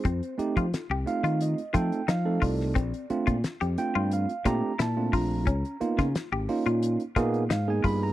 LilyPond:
<<
  \new Staff \with { instrumentName = "Clean electric guitar" } { \time 4/4 \key bes \dorian \tempo 4 = 88 c'8 r16 f'8 g'8 f'8 r16 f'8 ees'8 f'8 | c'8 r16 f'8 g'8 f'8 r16 f'8 e'8 f'8 | des'8 r16 f'8 g'8 f'8 r16 f'8 ees'8 f'8 | }
  \new Staff \with { instrumentName = "Tine electric piano" } { \time 4/4 \key bes \dorian << { c''4 r8 f''8 ees''8 g''8 f''8 d''8~ | d''4 r8 g''8 f''8 bes''8 a''8 bes''8~ | bes''4 r2 f''16 aes''16 ces'''16 bes''16 | } \\ { r8 <a c' ees' g'>8 <ees' a'>16 r16 <a c' ees' f'>8. r16 <a c' ees' a'>8 <ees' f'>16 <a c' ees' a'>8. | r8 <a c' d' f'>8 r8 <a c' d' f'>8. r16 <a c' d' g'>8 <d' f'>16 <a c' d' f'>8. | r8 <bes ces' ees' f'>8 r8 <bes des' ees' f'>8. r16 <bes ces' ees' aes'>8 <ees' f'>16 <bes ces' ees' aes'>8. | } >> }
  \new Staff \with { instrumentName = "Fingered electric bass" } { \clef bass \time 4/4 \key bes \dorian f,16 r8 f16 r16 c,16 r16 ees8 r16 f16 r16 f8 c,8 | bes,,16 r8 bes,16 r16 f,16 r16 g,8 r16 bes,16 r16 bes,8 bes,,8 | des,16 r8 des16 r16 aes,,16 r16 bes,8 r16 bes,8 aes,8 g,8 | }
  \new DrumStaff \with { instrumentName = "Drums" } \drummode { \time 4/4 <hh bd>16 hh16 hh16 <hh bd>16 <hh sn>8 hh16 hh16 hh16 hh16 <hh bd>16 hh16 <hh sn>8 <hho bd>16 sn16 | <hh bd>16 hh16 hh16 <hh bd>16 <hh sn>16 hh16 hh8 hh16 hh16 <hh bd sn>8 <hh sn>8 <hho bd>8 | <hh bd>16 hh16 hh16 <hh bd sn>16 <hh sn>8 hho16 hh16 hh16 hh16 <hh bd sn>16 hh16 <hh sn>8 <hho bd>8 | }
>>